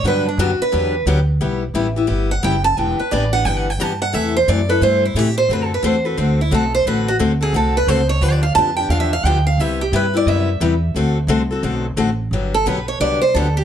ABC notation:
X:1
M:4/4
L:1/16
Q:"Swing" 1/4=176
K:G
V:1 name="Steel-string acoustic guitar"
B2 D2 F2 B6 z4 | z8 z2 f2 g2 a2 | g2 B2 d2 f2 (3g2 f2 g2 a2 f2 | e2 c2 d2 B2 c2 E2 G2 c2 |
(3B2 A2 B2 c2 B2 c2 E2 A2 c2 | B2 F2 z2 _A2 =A2 B2 c2 ^c2 | (3B2 d2 =f2 a2 g2 (3f2 e2 f2 g2 f2 | e2 G2 B2 d2 e8 |
z16 | z2 A2 B2 ^c2 d2 =c2 A2 G2 |]
V:2 name="Steel-string acoustic guitar"
[D,F,B,DG]2 z2 [D,F,B,DG] z3 [D,F,B,DG]2 z2 [D,F,B,DG] z3 | [G,B,EG]2 z2 [G,B,EG] z [B,EG]2 [G,B,EG]2 z2 [G,B,EG] z3 | [E,B,DG]2 z2 [E,B,DG] z [B,DG]2 [E,B,DG]2 z2 [E,B,DG] z3 | [C,E,A,EA]2 z2 [C,E,A,EA] z [A,EA]2 [C,E,A,EA]2 z2 [C,E,A,EA] z3 |
[D,A,CFA]2 z2 [D,A,CFA] z [CFA]2 [D,A,CFA]2 z2 [D,A,CFA] z3 | [D,A,CFA]2 z2 [D,A,CFA] z [CFA]2 [D,A,CFA]2 z2 [D,A,CFA] z3 | [D,=F,B,DG]2 z2 [D,F,B,DG] z [B,DG]2 [D,F,B,DG]2 z2 [D,F,B,DG] z3 | [C,G,B,EG]2 z2 [C,G,B,EG] z [B,EG]2 [C,G,B,EG]2 z2 [C,G,B,EG] z3 |
[D,A,CFA]2 z2 [D,A,CFA] z [CFA]2 [D,A,CFA]2 z2 [D,A,CFA] z3 | [D,F,B,DG]2 z2 [D,F,B,DG] z3 [D,F,B,DG]2 z2 [D,F,B,DG] z3 |]
V:3 name="Upright bass" clef=bass
G,,4 F,,2 z2 E,,4 D,,4 | B,,,4 A,,,4 G,,,4 F,,,4 | E,,,2 z2 A,,,4 G,,,4 G,,4 | E,,4 F,,4 G,,4 A,,4 |
F,,4 E,,4 D,,4 B,,,4 | A,,,4 D,,4 C,,4 ^C,,4 | D,,4 =F,,4 E,,4 D,,4 | C,,4 G,,4 F,,4 E,,4 |
D,,4 C,,4 B,,,4 A,,,4 | G,,,4 B,,,4 C,,4 D,,4 |]